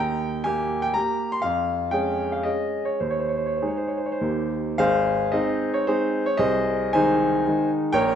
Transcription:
grand piano
Already playing: D#2 G5
0.44 A#3 G4 G#5
0.82 G5
0.94 A#3 G4 A#5
1.32 C6
1.42 F2 F5
1.91 G#3 C#4 G#4 G5
2.32 F5
2.43 G#3 C#4 G#4 D#5
2.85 C#5
3.00 D#2 C5
3.10 C#5
3.19 C5
3.29 C#5
3.37 C5
3.46 C#5
3.57 C5
3.62 G#3 D#4 G#4
3.67 C#5
3.77 C5
3.87 C#5
3.97 C5
4.06 C#5
4.12 C5
4.21 D#2 A#3 D#4 G4
4.78 G#1 G#4 C5 F5
5.32 G#3 C4 D#4 G#4 C5 D#5
5.74 C#5
5.87 G#3 C4 D#4 G#4 C5
6.26 C#5
6.37 C2 G#4 C5 D#5
6.93 D#3 G#3 D#4 C5 D#5 G#5
7.47 D#3 G#3 D#4
7.93 A#1 A#4 C#5 G5

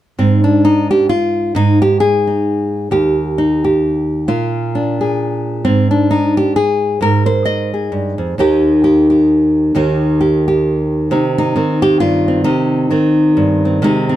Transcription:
nylon-string guitar
0.18 G#2 C4
0.44 D4
0.65 D#4
0.91 G4
1.09 F4
1.55 G#2 D#4
1.82 G4
2.00 G#4
2.27 D#4
2.91 D#2 G4
3.38 D#4
3.65 G4
4.28 A#2 F4
4.75 D4
5.01 G#4
5.65 G#2 C4
5.91 D4
6.11 D#4
6.37 G4
6.56 G#4
7.01 G#2 A#4
7.26 C5
7.45 D#5
7.74 G#4
7.92 G2
8.18 F2
8.38 D#2 D#3 D#4 G4
8.84 G4
9.10 G4
9.75 D#2 D#3 D#4 G4
10.21 G4
10.48 G4
11.11 C3 C4 D#4
11.38 D#4
11.56 D#3 C4
11.82 G4
12.00 G2 F4
12.28 C4
12.44 C3 D#4
12.91 D#3 C4
13.37 G2
13.65 C4
13.82 C3 G#3 C4 D#4
14.09 C4

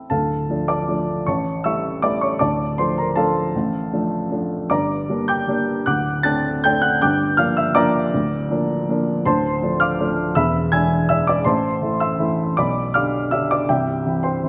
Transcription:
upright piano
Already playing: A3 C4 E4 A4
0.10 D1 D2 A4 F5 A5
0.50 F3 A3 D4
0.68 D5 A5 D6
0.89 F3 A3 D4
1.27 A1 A2 C#5 A5 C#6
1.64 G3 A3 E4 E5 C#6 E6
2.02 G3 A3 E4 D5 D6
2.21 C#5 C#6
2.39 D1 D2 D5 A5 D6
2.78 F3 A3 D4 C5 C6
2.98 A#4 A#5
3.16 F3 A3 D4 A4 F5 A5
3.55 A1 A2
3.93 F3 A3 D4
4.31 F3 A3 D4
4.70 G1 G2 D5 A#5 D6
5.09 G3 A#3 D4
5.28 G5 D6 G6
5.48 G3 A#3 D4
5.86 D1 D2 F#5 D6 F#6
6.23 A3 C4 D4 A5 F#6 A6
6.64 A3 C4 D4 G5 G6
6.82 F#5 F#6
7.01 G1 G2 G5 D6 G6
7.37 F3 A#3 D4 F5 F6
7.57 E5 E6
7.75 F3 A#3 D4 D5 A#5 D6
8.14 D1 D2
8.50 F3 A#3 D4
8.89 F3 A#3 D4
9.25 D1 D2 C5 A5 C6
9.62 F3 A3 D4
9.80 F5 D6 F6
10.00 F3 A3 D4
10.35 E1 E2 E5 B5 E6
10.72 E3 G#3 D4 G#5 E6 G#6
11.09 E3 G#3 D4 E5 E6
11.27 D5 D6
11.45 A1 A2 C5 A5 C6
11.82 E3 A3 E4
12.00 E5 C6 E6
12.19 E3 A3 E4
12.57 B1 B2 D5 B5 D6
12.94 D3 D4 G4 F5 D6 F6
13.31 D3 D4 G4 E5 E6
13.51 D5 D6
13.69 C1 C2 G4 E5 G5
14.06 E3 C4 E4
14.23 C5 G5 C6
14.44 E3 C4 E4

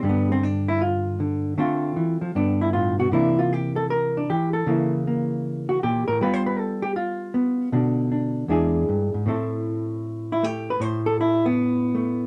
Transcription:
hollow-body jazz guitar
0.03 G2 D3 G3
0.09 B3
0.32 C4
0.43 D4
0.68 E4
0.81 F4
1.20 D3
1.58 D3 A3 C4 F4
1.96 E3
2.21 F3
2.35 G2 D3 B3 D4
2.61 E4
2.73 A2 F4
2.99 B2 F#4
3.12 C3 E3 A#3 D4 E4
3.39 F4
3.53 G4
3.76 A4
3.90 A#4
4.17 D4
4.30 E3 G4
4.53 A4
4.66 C#3 E3 A#3 E4
5.07 A#3
5.69 F#4
5.83 A#2 G4
6.08 A2 A#4
6.21 G3 B3 F4 B4
6.34 C5
6.46 B4
6.59 A4
6.82 G4
6.96 F4
7.34 B3
7.72 B2 D3 D4
8.12 D4
8.48 E2 G#3 D4 E4 G#4
8.89 G2
9.14 G#2
9.26 A2 A3 C4 E4 A4
10.32 E4
10.43 A3 G4
10.70 B4
10.80 A2 C5
11.06 A4
11.21 E4
11.46 B3
11.95 A3

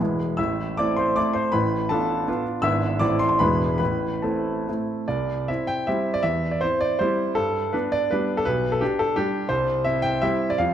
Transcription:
grand piano
Already playing: B4 B5
0.00 E1 E2 G#3 B3 E4
0.37 A1 A2 E5 E6
0.77 A3 C4 E4 D5 D6
0.97 C5 C6
1.16 A3 C4 E4 D5 D6
1.33 C5 C6
1.52 A1 A2 B4 B5
1.89 B3 D4 F4 A4 A5
2.27 B3 D4 F4
2.62 G#1 G#2 B3 D4 E4 E5 E6
2.99 A1 A2 A3 C4 E4 D5 D6
3.19 C6
3.29 C6
3.39 E1 E2 G#3 D4 E4 B4 B5
3.78 A1 A2 B4 B5
4.22 A3 C4 E4 A4 A5
4.68 A3 C4 E4
5.08 C2 D5
5.48 C4 E4 E5
5.67 G5
5.87 G3 C4 E4 E5
6.14 D5
6.23 E2 E5
6.51 D5
6.61 C4 E4 C5
6.81 D5
6.99 G3 C4 E4 C5
7.35 G2 A4
7.73 B3 D4 B4
7.92 D5
8.11 G3 B3 D4 B4
8.37 A4
8.45 B1 B4
8.72 A4
8.81 D4 G4
8.99 A4
9.16 G3 D4 G4
9.49 C2 C5
9.84 C4 E4 E5
10.02 G5
10.22 G3 C4 E4 E5
10.50 D5
10.58 F2 F5

